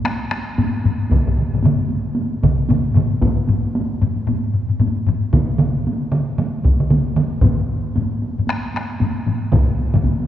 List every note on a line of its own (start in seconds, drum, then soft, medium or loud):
0.05 taiko rim medium
0.05 taiko high medium
0.20 taiko high soft
0.31 taiko rim medium
0.31 taiko high medium
0.47 taiko high soft
0.58 taiko low-mid medium
0.58 taiko high medium
0.74 taiko high soft
0.84 taiko low-mid loud
0.84 taiko high medium
0.99 taiko high soft
1.10 taiko medium
1.10 taiko low-mid medium
1.10 taiko mid medium
1.10 taiko high medium
1.25 taiko low-mid medium
1.25 taiko mid medium
1.25 taiko high soft
1.36 taiko low-mid medium
1.36 taiko mid medium
1.36 taiko high soft
1.52 taiko low-mid medium
1.52 taiko mid medium
1.52 taiko high soft
1.63 taiko low-mid medium
1.63 taiko mid medium
1.63 taiko high medium
1.79 taiko high medium
1.88 taiko high medium
2.05 taiko high soft
2.15 taiko high medium
2.31 taiko high soft
2.43 taiko medium
2.43 taiko low-mid medium
2.43 taiko mid loud
2.43 taiko high medium
2.58 taiko high soft
2.69 taiko low-mid medium
2.69 taiko mid loud
2.69 taiko high medium
2.86 taiko high soft
2.95 taiko low-mid loud
2.95 taiko mid medium
2.95 taiko high medium
3.11 taiko high soft
3.22 taiko medium
3.22 taiko low-mid medium
3.22 taiko high medium
3.38 taiko high soft
3.48 taiko low-mid medium
3.48 taiko high medium
3.64 taiko high soft
3.75 taiko high medium
4.01 taiko low-mid loud
4.01 taiko high medium
4.17 taiko high soft
4.27 taiko low-mid loud
4.27 taiko high medium
4.45 taiko high soft
4.54 taiko low-mid medium
4.69 taiko low-mid medium
4.69 taiko high soft
4.80 taiko low-mid medium
4.80 taiko high medium
4.98 taiko high soft
5.07 taiko low-mid loud
5.07 taiko high soft
5.24 taiko high soft
5.33 taiko loud
5.33 taiko mid loud
5.33 taiko high medium
5.50 taiko high soft
5.59 taiko mid loud
5.59 taiko high soft
5.76 taiko high soft
5.87 taiko high medium
6.12 taiko mid loud
6.12 taiko high soft
6.28 taiko high soft
6.38 taiko mid medium
6.38 taiko high medium
6.55 taiko high soft
6.65 taiko medium
6.65 taiko mid medium
6.65 taiko high soft
6.80 taiko mid medium
6.80 taiko high soft
6.90 taiko mid medium
6.90 taiko high medium
7.07 taiko high soft
7.16 taiko mid medium
7.16 taiko high medium
7.34 taiko high soft
7.41 taiko medium
7.41 taiko low-mid medium
7.41 taiko high medium
7.60 taiko high soft
7.85 taiko high soft
7.96 taiko low-mid medium
7.96 taiko high medium
8.22 taiko high soft
8.37 taiko low-mid medium
8.37 taiko high soft
8.47 taiko rim medium
8.47 taiko high medium
8.64 taiko high soft
8.74 taiko rim medium
8.74 taiko high soft
8.90 taiko high soft
9.00 taiko low-mid medium
9.00 taiko high medium
9.16 taiko high soft
9.26 taiko low-mid loud
9.26 taiko high soft
9.42 taiko high soft
9.52 taiko loud
9.52 taiko low-mid medium
9.52 taiko mid loud
9.52 taiko high medium
9.69 taiko high soft
9.79 taiko high medium
9.94 taiko low-mid medium
9.94 taiko mid loud
9.94 taiko high soft
10.04 taiko medium
10.04 taiko high medium
10.20 taiko high medium